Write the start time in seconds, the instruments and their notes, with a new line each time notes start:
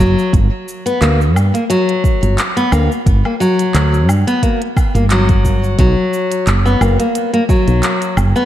0.00 fretless electric bass F#1, nylon-string guitar F#3, shaker
0.19 shaker
0.33 fretless electric bass G1, kick, closed hi-hat, shaker
0.68 shaker
0.86 nylon-string guitar B3, closed hi-hat, shaker
1.01 fretless electric bass D2, nylon-string guitar A#3, clap, closed hi-hat, shaker
1.21 shaker
1.36 fretless electric bass G2, low woodblock, shaker
1.54 nylon-string guitar A#3, closed hi-hat, shaker
1.70 nylon-string guitar F#3, closed hi-hat, shaker
1.89 closed hi-hat
2.04 kick, shaker
2.23 fretless electric bass G1, closed hi-hat, shaker
2.38 clap, closed hi-hat, shaker
2.57 nylon-string guitar B3, closed hi-hat, shaker
2.72 fretless electric bass D2, nylon-string guitar A#3, low woodblock, shaker
2.92 shaker
3.06 fretless electric bass G1, kick, closed hi-hat, shaker
3.25 nylon-string guitar A#3, low woodblock
3.40 nylon-string guitar F#3, shaker
3.59 closed hi-hat, shaker
3.74 fretless electric bass D2, clap, closed hi-hat, shaker
3.94 shaker
4.08 fretless electric bass G2, low woodblock, shaker
4.27 nylon-string guitar B3, closed hi-hat, shaker
4.43 nylon-string guitar A#3, kick, closed hi-hat, shaker
4.62 closed hi-hat
4.77 kick, low woodblock, shaker
4.95 fretless electric bass G1, nylon-string guitar A#3, closed hi-hat, shaker
5.10 nylon-string guitar F#3, clap, closed hi-hat, shaker
5.29 kick, closed hi-hat, shaker
5.45 kick, shaker
5.64 shaker
5.79 fretless electric bass B1, nylon-string guitar F#3, kick, closed hi-hat, shaker
6.13 shaker
6.32 closed hi-hat, shaker
6.47 fretless electric bass F#1, clap, closed hi-hat, shaker
6.65 nylon-string guitar B3, shaker
6.81 fretless electric bass F#1, nylon-string guitar A#3, low woodblock, shaker
6.99 nylon-string guitar A#3, closed hi-hat, shaker
7.15 closed hi-hat, shaker
7.33 nylon-string guitar A#3, closed hi-hat
7.49 nylon-string guitar F#3, kick, shaker
7.68 fretless electric bass B1, closed hi-hat, shaker
7.83 clap, closed hi-hat, shaker
8.02 closed hi-hat, shaker
8.17 fretless electric bass F#1, low woodblock, shaker
8.36 nylon-string guitar B3, shaker